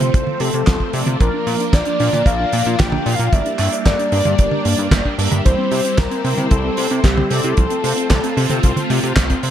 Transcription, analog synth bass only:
0.01 C3
0.14 C2
0.40 C3
0.54 C3
0.67 C2
0.94 C3
1.07 C3
1.21 A#1
1.47 A#2
1.73 A#1
2.00 A#2
2.13 A#2
2.26 A#1
2.53 A#2
2.66 A#2
2.80 A#1
3.06 A#2
3.19 A#2
3.33 G1
3.59 G2
3.86 G1
4.12 G2
4.25 G2
4.39 G1
4.65 G2
4.79 G2
4.91 G1
5.18 G2
5.32 G2
5.46 C2
5.72 C3
5.98 C2
6.25 C3
6.38 C3
6.51 C2
6.78 C3
6.91 C3
7.04 C2
7.31 C3
7.44 C3
7.58 C2
7.84 C3
8.11 C2
8.37 C3
8.50 C3
8.64 C2
8.90 C3
9.03 C3
9.16 C2
9.43 C3

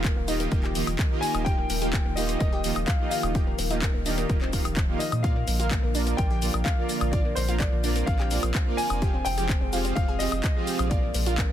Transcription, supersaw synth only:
0.28 D#3 A#3 D#4 F4 G4 D#5
0.52 D#3 A#3 D#4 F4 G4 D#5
0.75 D#3 A#3 D#4 F4 G4 D#5
1.11 D#3 A#3 D#4 F4 G4 D#5
1.46 D#3 A#3 D#4 F4 G4 D#5
1.82 D#3 A#3 D#4 F4 G4 F5
2.17 D#3 A#3 D#4 F4 G4 D#5
2.40 D#3 A#3 D#4 F4 G4 D#5
2.64 D#3 A#3 D#4 F4 G4 D#5
3.00 D#3 A#3 D#4 F4 G4 D#5
3.35 D#3 A#3 D#4 F4 G4 D#5
3.70 D#3 A#3 D#4 F4 G4 F5
4.06 D#3 A#3 D#4 F4 G4 D#5
4.29 D#3 A#3 D#4 F4 G4 D#5
4.53 D#3 A#3 D#4 F4 G4 F5
4.89 D#3 A#3 D#4 F4 G4 F5
5.24 A#3 F4 A#4 D5
5.59 A#3 F4 A#4 F5
5.95 A#3 F4 A#4 D5
6.18 A#3 F4 A#4 D5
6.42 A#3 F4 A#4 D5
6.78 A#3 F4 A#4 D5
7.13 A#3 F4 A#4 D5
7.48 A#3 F4 A#4 F5
7.84 A#3 F4 A#4 D5
8.07 A#3 F4 A#4 D5
8.31 A#3 F4 A#4 D5
8.67 A#3 F4 A#4 D5
9.02 F3 C4 F4 G4 G#4 F5
9.38 F3 C4 F4 G4 G#4 G5
9.73 F3 C4 F4 G4 G#4 F5
9.96 F3 C4 F4 G4 G#4 F5
10.20 F3 C4 F4 G4 G#4 F5
10.56 F3 C4 F4 G4 G#4 F5
10.91 A#3 F4 A#4 D5
11.26 A#3 F4 A#4 F5

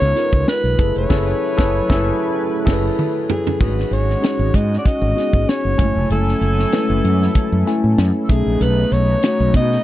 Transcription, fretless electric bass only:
0.02 C#2
0.33 C#2
0.64 B1
0.79 F#1
0.96 F1
1.10 F#1
1.59 F#1
1.90 F#1
2.67 F#1
3.60 G#1
3.91 G#1
4.39 G#1
4.54 G#2
5.02 G#1
5.34 G#1
5.65 F#1
5.79 F#1
5.95 F1
6.10 F#1
6.41 F#1
6.90 F#1
7.04 F#2
7.52 F#2
7.84 A2
7.98 F#2
8.29 B1
8.46 A#1
8.61 B1
8.92 B1
9.40 B1
9.54 B2

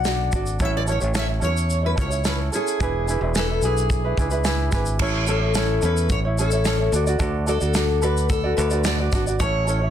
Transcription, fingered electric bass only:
Already playing: B1
0.32 G#1
0.60 A1
1.02 A1
1.42 E2
1.98 C#2
2.80 E1
3.21 E1
3.62 B1
4.18 C#2
4.73 G#1
5.00 A1
5.83 E2
6.10 A1
6.92 D2
7.20 D2
7.61 D2
8.58 D2
9.13 G#1
9.40 A1

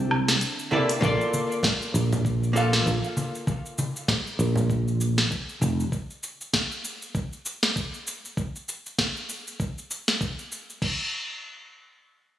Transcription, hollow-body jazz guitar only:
0.71 C3 A#3 E4 A4 D5
1.01 A#3 F4 A4 D5
2.53 A#3 F4 A4
2.57 F5

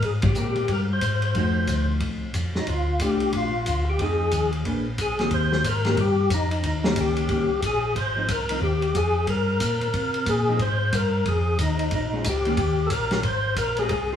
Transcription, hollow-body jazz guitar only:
0.36 G#3 C4 G4 A#4
1.35 F3 A3 D#4 F#4
3.01 A3 D4 F4
4.00 F3 C4 D#4 G#4
4.66 A#3 D4 G#4 B4
5.20 D#3 A#3 C4 G4
5.85 D#3 A#3 C4 G4
6.84 D#3 A#3 C#4 G4
7.30 D#3 A#3 C#4 G4
8.16 F3 C4 D#4
8.50 F3 C4 D#4
10.48 F3 C4 D#4 G#4
12.13 G#3 C#4 F4
12.46 D#3 A#3 C#4 G4
13.78 G#3 C4 G4 A#4

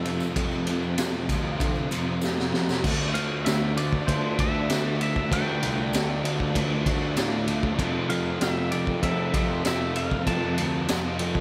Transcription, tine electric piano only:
Already playing: F2
0.35 F2
0.98 F2
1.29 D2
1.59 D3
1.90 F2
2.22 F2
2.83 D2
3.15 D2
3.47 D2
3.76 D2
4.08 D2
4.39 D2
4.70 D2
5.31 D2
5.62 C2
5.93 D2
6.24 D2
6.56 D2
6.86 D2
7.16 A2
7.46 D2
7.79 F2
8.10 F2
8.40 F2
8.72 F2
9.03 F2
9.34 F2
9.65 F2
10.27 F2
10.58 D2
10.89 F2
11.19 F2

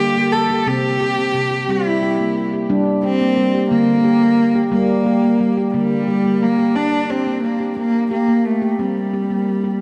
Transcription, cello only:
Already playing: G4
0.32 A4
0.67 G4
1.70 E4
3.04 C4
3.70 A#3
4.73 A#3
5.75 G3
6.43 A#3
6.75 D4
7.10 C4
7.44 A#3
7.79 A#3
8.12 A#3
8.45 A3
8.80 G3

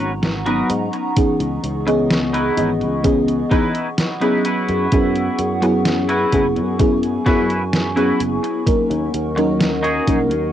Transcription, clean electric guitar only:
Already playing: F#4 A#4 B4 C#5
0.46 F#4 A#4 B4 D#5
0.93 muted clean electric guitar stroke
1.86 muted clean electric guitar stroke
2.10 muted clean electric guitar stroke
2.33 D#4 E4 B4
3.04 muted clean electric guitar stroke
3.51 D#4 E4 B4
4.21 D#4 E4 B4
4.45 E4 F#4 B4
5.62 muted clean electric guitar stroke
5.85 muted clean electric guitar stroke
6.09 E4 F#4 B4
6.79 muted clean electric guitar stroke
7.26 E4 F#4 B4
7.96 E4 F#4 B4
8.43 muted clean electric guitar stroke
9.36 muted clean electric guitar stroke
9.60 muted clean electric guitar stroke
9.83 D#4 F#4 G#4

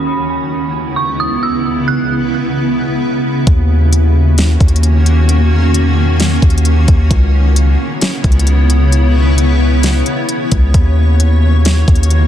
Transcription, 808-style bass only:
3.47 D#2
4.61 D#2
5.52 E2
6.42 D#2
6.88 D#2
7.11 C#2
8.24 C#2
10.52 C#2
10.74 D#2
11.88 D#2

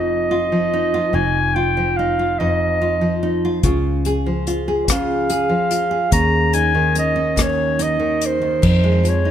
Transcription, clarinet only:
Already playing: D#5
1.15 G#5
1.55 G5
1.97 F5
2.39 D#5
4.91 F5
6.13 A#5
6.54 G#5
6.99 D#5
7.42 C#5
7.83 D#5
8.26 C5
8.68 C5
9.09 C#5

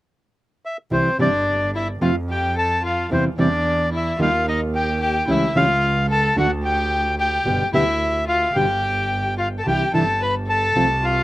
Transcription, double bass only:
0.91 C2
1.19 G1
2.00 F2
3.10 E2
3.37 E2
4.20 D#2
5.28 C#2
5.55 C#2
6.37 D2
7.46 G1
7.73 D2
8.56 G1
9.66 C2
9.94 G1
10.76 C2

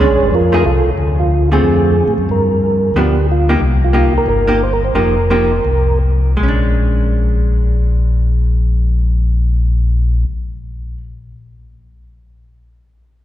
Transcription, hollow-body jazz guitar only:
0.00 G#3 C#4 D4
0.52 F3 A3 D#4 G#4
1.52 D3 A3 C4 F4
2.96 F3 B3 D4
3.49 A#3 D#4 G4
3.93 A#3 D#4 G4
4.47 A#3 D#4 G4
4.95 F3 A#3 D#4 G4
5.30 F3 A#3 D#4 G4
6.37 G#3
6.43 C#4
6.48 D4

